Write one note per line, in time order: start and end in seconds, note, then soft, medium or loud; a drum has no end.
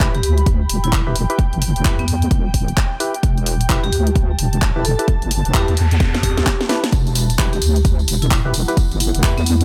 0.00 0.22 E1 loud
0.00 0.15 E4 loud
0.00 0.15 G4 medium
0.00 0.15 B4 loud
0.00 0.26 B5 medium
0.00 kick loud
0.00 clap loud
0.00 closed hi-hat medium
0.14 0.20 G4 medium
0.14 closed hi-hat soft
0.23 0.68 D2 loud
0.23 0.32 G4 medium
0.23 3.95 G5 medium
0.23 open hi-hat loud
0.38 closed hi-hat soft
0.46 kick loud
0.46 closed hi-hat medium
0.69 1.14 E1 loud
0.69 open hi-hat loud
0.84 1.00 E4 medium
0.84 closed hi-hat medium
0.92 kick loud
0.92 clap loud
0.92 closed hi-hat medium
1.07 1.16 E4 medium
1.07 1.16 G4 medium
1.07 1.16 B4 loud
1.16 1.28 E1 loud
1.16 open hi-hat medium
1.30 1.39 E4 medium
1.30 1.39 G4 medium
1.30 1.39 B4 loud
1.30 closed hi-hat medium
1.39 kick loud
1.39 closed hi-hat medium
1.53 1.74 G1 loud
1.53 closed hi-hat soft
1.62 open hi-hat loud
1.76 1.83 E1 loud
1.76 closed hi-hat soft
1.85 2.30 E2 medium
1.85 2.05 E4 loud
1.85 2.05 G4 medium
1.85 2.05 B4 loud
1.85 kick loud
1.85 clap loud
1.85 closed hi-hat medium
1.99 2.31 B3 medium
1.99 closed hi-hat soft
2.08 open hi-hat medium
2.22 closed hi-hat soft
2.31 2.76 E1 medium
2.31 kick loud
2.31 closed hi-hat medium
2.54 kick medium
2.54 open hi-hat medium
2.68 closed hi-hat soft
2.77 kick loud
2.77 clap loud
2.77 closed hi-hat medium
3.00 3.15 E4 loud
3.00 3.15 G4 medium
3.00 3.15 B4 loud
3.00 open hi-hat medium
3.14 closed hi-hat soft
3.23 3.68 E1 loud
3.23 kick loud
3.23 closed hi-hat medium
3.38 closed hi-hat soft
3.46 open hi-hat medium
3.61 closed hi-hat medium
3.69 3.91 E1 loud
3.69 3.84 E4 loud
3.69 3.84 G4 medium
3.69 3.84 B4 loud
3.69 kick loud
3.69 clap loud
3.69 closed hi-hat medium
3.84 3.89 G4 medium
3.84 closed hi-hat soft
3.92 4.37 D2 medium
3.92 4.02 G4 medium
3.92 7.64 A5 medium
3.92 open hi-hat medium
4.07 closed hi-hat medium
4.16 kick loud
4.16 closed hi-hat medium
4.39 4.83 E1 loud
4.39 open hi-hat loud
4.53 closed hi-hat medium
4.62 kick loud
4.62 clap loud
4.62 closed hi-hat medium
4.76 4.85 E4 loud
4.76 4.85 G4 medium
4.76 4.85 B4 loud
4.85 4.97 E1 medium
4.85 5.04 A4 medium
4.85 open hi-hat medium
4.99 5.08 E4 medium
4.99 5.08 G4 medium
4.99 5.08 B4 loud
4.99 closed hi-hat medium
5.08 kick loud
5.08 closed hi-hat medium
5.08 noise sweep medium
5.22 5.43 G1 medium
5.22 closed hi-hat soft
5.31 open hi-hat loud
5.45 5.53 E1 medium
5.45 closed hi-hat medium
5.54 5.99 E2 loud
5.54 5.74 E4 loud
5.54 5.74 G4 medium
5.54 5.73 G4 medium
5.54 5.74 B4 loud
5.54 kick loud
5.54 clap loud
5.54 closed hi-hat medium
5.68 closed hi-hat soft
5.77 open hi-hat medium
5.91 closed hi-hat medium
6.00 6.35 E2 medium
6.00 kick loud
6.00 snare medium
6.00 closed hi-hat medium
6.14 snare medium
6.14 closed hi-hat soft
6.23 6.61 G4 medium
6.23 kick medium
6.23 open hi-hat loud
6.38 6.45 D2 loud
6.38 snare medium
6.38 closed hi-hat medium
6.46 kick loud
6.46 snare medium
6.46 clap loud
6.46 closed hi-hat medium
6.61 snare medium
6.61 closed hi-hat soft
6.69 6.84 E4 loud
6.69 6.84 G4 medium
6.69 6.84 B4 loud
6.69 snare loud
6.69 open hi-hat medium
6.84 snare medium
6.84 closed hi-hat medium
6.92 7.37 E1 loud
6.92 9.64 G3 medium
6.92 9.64 B3 medium
6.92 9.64 E4 medium
6.92 kick loud
6.92 closed hi-hat medium
6.92 tambourine soft
7.07 closed hi-hat soft
7.07 tambourine soft
7.15 open hi-hat loud
7.15 tambourine medium
7.30 closed hi-hat medium
7.30 tambourine soft
7.39 7.60 E1 loud
7.39 7.53 E4 medium
7.39 7.53 G4 medium
7.39 7.53 B4 loud
7.39 kick loud
7.39 clap loud
7.39 closed hi-hat medium
7.53 7.59 G4 medium
7.53 closed hi-hat soft
7.53 tambourine soft
7.62 8.06 D2 medium
7.62 7.71 G4 medium
7.62 open hi-hat medium
7.62 tambourine medium
7.76 closed hi-hat medium
7.76 tambourine soft
7.85 kick loud
7.85 closed hi-hat medium
7.85 tambourine medium
7.99 tambourine soft
8.08 8.53 E1 medium
8.08 open hi-hat loud
8.08 tambourine medium
8.19 8.39 E4 medium
8.19 9.64 F#5 loud
8.19 closed hi-hat medium
8.19 tambourine soft
8.31 kick loud
8.31 clap loud
8.31 closed hi-hat medium
8.31 tambourine medium
8.45 8.54 E4 medium
8.45 8.54 G4 medium
8.45 8.54 B4 loud
8.54 8.66 E1 loud
8.54 open hi-hat medium
8.54 tambourine medium
8.68 8.77 E4 medium
8.68 8.77 G4 medium
8.68 8.77 B4 loud
8.68 closed hi-hat medium
8.68 tambourine soft
8.77 kick loud
8.77 closed hi-hat medium
8.77 tambourine medium
8.91 9.12 G1 loud
8.91 closed hi-hat soft
8.91 tambourine soft
9.00 open hi-hat loud
9.00 tambourine medium
9.14 9.22 E1 loud
9.14 closed hi-hat medium
9.14 tambourine soft
9.23 9.64 E2 loud
9.23 9.43 E4 loud
9.23 9.43 G4 medium
9.23 9.43 B4 loud
9.23 kick loud
9.23 clap loud
9.23 closed hi-hat medium
9.23 tambourine medium
9.37 9.64 B3 medium
9.37 closed hi-hat soft
9.37 tambourine soft
9.46 open hi-hat loud
9.46 tambourine medium
9.61 closed hi-hat medium
9.61 tambourine soft